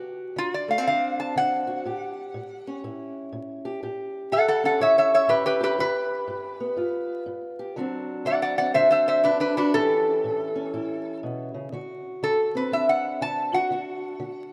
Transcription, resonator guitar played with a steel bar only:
0.38 0.53 F4 medium
0.54 0.69 D5 medium
0.71 0.86 F5 medium
0.87 1.18 F5 medium
1.20 1.35 A5 medium
1.37 2.80 F#5 loud
4.32 4.47 A4 medium
4.32 4.48 F#5 medium
4.48 4.63 A4 medium
4.48 4.64 F#5 medium
4.65 4.80 A4 medium
4.65 4.80 F#5 medium
4.81 4.97 C#5 medium
4.81 4.97 E5 medium
4.98 5.12 C#5 medium
4.98 5.13 E5 medium
5.14 5.29 C#5 medium
5.14 5.30 E5 medium
5.29 5.44 G4 medium
5.29 5.45 B4 medium
5.46 5.61 G4 medium
5.46 5.62 B4 medium
5.63 5.78 G4 medium
5.63 5.79 B4 medium
5.80 7.24 B4 loud
8.26 8.41 D5 medium
8.26 8.41 F#5 medium
8.42 8.57 D5 medium
8.42 8.57 F#5 medium
8.58 8.73 D5 medium
8.58 8.74 F#5 medium
8.74 8.89 C5 medium
8.74 8.91 E5 loud
8.91 9.06 C5 medium
8.91 9.07 E5 medium
9.08 9.23 C5 medium
9.08 9.24 E5 medium
9.24 9.39 D4 medium
9.24 9.40 B4 medium
9.40 9.56 D4 medium
9.40 9.57 B4 medium
9.57 9.73 D4 medium
9.57 9.74 B4 medium
9.74 11.19 A4 loud
12.24 12.55 A4 medium
12.57 12.72 B4 medium
12.73 12.88 E5 medium
12.89 13.21 F#5 medium
13.22 13.54 A5 medium
13.54 14.51 F#5 medium

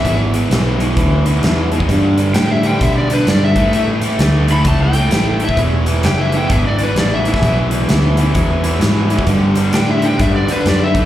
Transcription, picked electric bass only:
0.05 0.49 G#1 medium
0.50 0.95 B1 medium
0.97 1.42 D2 medium
1.43 1.87 E2 medium
1.89 2.33 G2 medium
2.34 2.79 A2 medium
2.81 3.26 B2 medium
3.27 3.72 G2 medium
3.73 4.00 A2 medium
4.01 muted picked electric bass stroke soft
4.19 4.64 D2 medium
4.65 5.10 C#2 medium
5.12 5.56 A1 medium
5.57 6.02 E1 medium
6.04 6.48 F#1 medium
6.50 6.95 G#1 medium
6.96 7.41 A1 medium
7.43 7.87 B1 medium
7.88 8.33 D2 medium
8.35 8.79 E2 medium
8.80 9.25 G#2 medium
9.27 9.72 G2 medium
9.74 10.18 A2 medium
10.19 10.46 G2 medium
10.48 muted picked electric bass stroke soft
10.66 11.05 F#2 medium

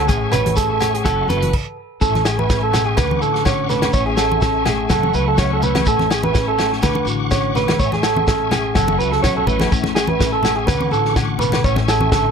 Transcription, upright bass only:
0.09 0.31 A1 loud
0.31 1.01 A1 loud
1.06 1.27 F#1 medium
1.28 1.51 F#1 medium
2.01 2.94 A1 medium
2.98 3.20 D2 loud
3.21 3.90 A1 medium
3.93 4.86 A1 loud
4.90 5.12 F#1 medium
5.14 5.86 C#2 medium
5.86 6.79 A1 loud
6.83 7.04 D2 loud
7.05 7.74 A1 loud
7.79 8.71 A1 medium
8.76 8.97 F#1 medium
8.99 9.21 C#2 medium
9.24 9.45 B1 loud
9.47 9.72 A1 loud
9.72 10.64 A1 medium
10.68 10.90 D2 medium
10.91 11.59 A1 loud
11.64 12.31 A1 loud

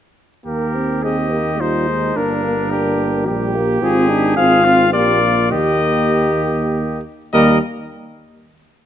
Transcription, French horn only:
1.04 1.16 G#4 medium
1.32 1.59 G4 soft
1.60 1.89 F4 soft
1.88 2.15 D#4 soft
2.16 2.43 D4 soft
2.44 2.56 A#3 soft
2.71 3.28 D4 medium
3.26 3.81 G4 medium
3.82 4.11 F4 medium
4.10 4.37 D#4 medium
4.37 4.93 F4 medium
4.93 5.22 G4 medium
5.22 5.51 F4 medium
5.52 7.00 G4 medium
7.34 7.59 A#3 medium

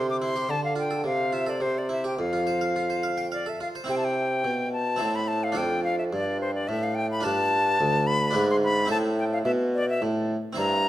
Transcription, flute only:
0.10 0.20 D6 medium
0.21 0.52 C6 medium
0.50 0.64 A5 loud
0.64 0.77 F5 medium
0.79 1.05 G5 medium
1.06 1.35 F5 medium
1.34 1.51 E5 medium
1.49 1.63 D5 medium
1.62 1.80 C5 medium
1.78 1.91 D5 medium
1.91 2.04 E5 medium
2.06 2.18 G5 medium
2.19 3.30 F5 medium
3.32 3.51 D5 medium
3.49 3.61 E5 medium
3.62 3.68 F5 medium
3.90 3.96 G5 medium
3.97 4.06 A5 medium
4.04 4.72 G5 medium
4.73 5.17 A5 medium
5.15 5.29 B5 medium
5.28 5.45 A5 medium
5.44 5.59 F5 medium
5.57 5.84 G5 medium
5.84 5.98 F5 medium
5.98 6.04 E5 medium
6.12 6.40 D5 medium
6.41 6.54 C5 medium
6.55 6.69 D5 medium
6.68 6.85 E5 medium
6.83 6.96 F5 medium
6.95 7.10 G5 medium
7.12 7.26 B5 medium
7.24 8.08 A5 loud
8.07 8.49 B5 loud
8.51 8.57 C6 medium
8.63 8.90 B5 loud
8.91 8.97 A5 loud
9.19 9.25 G5 medium
9.33 9.39 F5 medium
9.45 9.51 E5 medium
9.75 9.88 D5 medium
9.90 10.03 E5 medium
10.58 10.89 A#5 loud

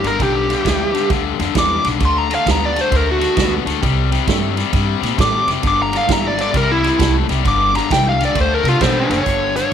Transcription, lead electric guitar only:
0.07 0.20 A#4 medium
0.23 1.09 G4 medium
1.58 1.86 D6 loud
2.05 2.18 C6 medium
2.18 2.32 A#5 medium
2.35 2.47 F5 medium
2.51 2.63 A#5 medium
2.66 2.81 D5 medium
2.81 2.96 C5 medium
2.96 3.08 A#4 medium
3.11 3.53 F#4 loud
5.21 5.49 D6 medium
5.67 5.80 D6 medium
5.82 5.95 A#5 medium
5.97 6.10 F5 medium
6.12 6.25 A#5 medium
6.27 6.40 D5 medium
6.41 6.55 D5 medium
6.57 6.70 A#4 loud
6.72 7.14 E4 loud
7.48 7.75 D6 loud
7.76 7.90 A#5 medium
7.92 8.06 G5 loud
8.09 8.22 F5 medium
8.25 8.37 D5 medium
8.41 8.53 C5 medium
8.54 8.67 A#4 medium
8.68 8.84 F4 medium
8.81 8.97 D4 medium
8.81 9.10 C5 loud
8.99 9.22 D4 loud
9.10 9.55 C#5 loud
9.56 9.73 C#5 medium

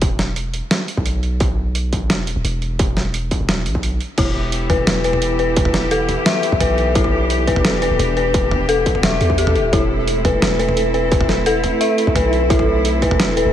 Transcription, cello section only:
4.18 9.69 E3 medium
4.18 9.69 B3 medium
4.18 6.93 E4 medium
4.18 9.69 G4 medium
6.96 9.70 D4 medium
9.73 13.53 A3 medium
9.73 13.53 C4 medium
9.73 13.53 E4 medium

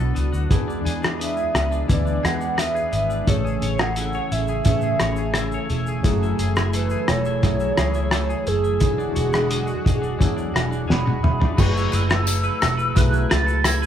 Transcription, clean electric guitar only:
0.00 0.88 D3 medium
0.00 0.15 B3 medium
0.00 0.31 F#4 soft
0.00 0.57 A4 medium
0.15 1.19 B3 medium
0.32 0.57 F#4 medium
0.50 1.88 E3 medium
0.68 1.01 D4 medium
0.85 1.36 G#4 medium
1.02 1.70 D4 medium
1.20 1.53 B3 medium
1.37 2.23 G#4 medium
1.54 2.56 B3 medium
1.71 2.04 D4 medium
1.88 5.38 E3 medium
2.05 2.39 D4 soft
2.23 2.75 G#4 medium
2.41 3.08 D4 medium
2.57 2.90 B3 medium
2.75 3.44 G#4 medium
2.92 3.27 B3 medium
3.10 3.34 D4 soft
3.28 4.65 A3 medium
3.44 3.79 G#4 medium
3.63 4.14 C#5 medium
3.80 4.49 G#4 medium
3.97 4.31 E4 medium
4.15 5.01 C#5 medium
4.32 5.36 E4 medium
4.49 4.83 G#4 medium
4.66 6.42 A3 medium
4.83 5.18 G#4 medium
5.01 5.54 C#5 medium
5.18 5.88 G#4 medium
5.36 5.71 E4 medium
5.54 9.01 C#5 medium
5.71 6.22 E4 medium
5.88 6.39 G#4 soft
6.06 7.43 F#3 medium
6.23 6.56 E4 medium
6.39 6.91 G#4 medium
6.57 7.26 E4 medium
6.74 7.07 A3 medium
6.91 7.78 G#4 medium
7.08 8.11 A3 medium
7.26 7.60 E4 medium
7.43 8.80 F#3 medium
7.60 7.95 E4 soft
7.78 8.29 G#4 medium
7.95 8.63 E4 medium
8.12 8.46 A3 medium
8.29 9.01 G#4 medium
8.47 8.88 A3 medium
8.64 8.98 E4 soft
8.80 10.18 E3 medium
8.98 9.31 D4 medium
9.15 9.67 F#4 medium
9.33 10.00 D4 medium
9.50 9.84 G#3 medium
9.67 10.54 F#4 medium
9.85 10.87 G#3 medium
10.02 10.35 D4 medium
10.19 11.57 E3 medium
10.36 10.70 D4 medium
10.54 11.05 F#4 medium
10.71 11.39 D4 medium
10.88 11.23 G#3 medium
11.06 11.78 F#4 medium
11.23 12.12 G#3 medium
11.40 11.65 D4 soft
11.57 12.94 F#3 medium
11.57 11.92 B4 medium
11.75 12.25 E4 medium
11.92 12.43 B4 medium
12.09 12.60 A4 medium
12.27 13.11 E4 medium
12.44 12.77 B4 medium
12.61 13.46 A4 medium
12.77 12.95 B4 medium
12.95 13.86 F#3 medium
12.95 13.29 B4 medium
13.12 13.63 E4 medium
13.30 13.82 B4 medium
13.46 13.86 A4 medium
13.65 13.86 E4 medium
13.82 13.86 B4 medium

